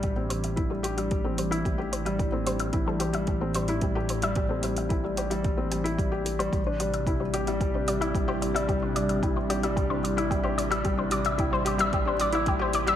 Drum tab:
HH |x-xxx-xxx-xxx-xx|x-xxx-xxx-xxx-xx|x-xxx-xxx-xxx-xx|x-xxx-xxx-xxx-xx|
BD |o---o---o---o---|o---o---o---o---|o---o---o---o---|o---o---o---o---|

HH |x-xxx-xxx-xxx-xx|x-xxx-xxx-xxx-xx|
BD |o---o---o---o---|o---o---o---o---|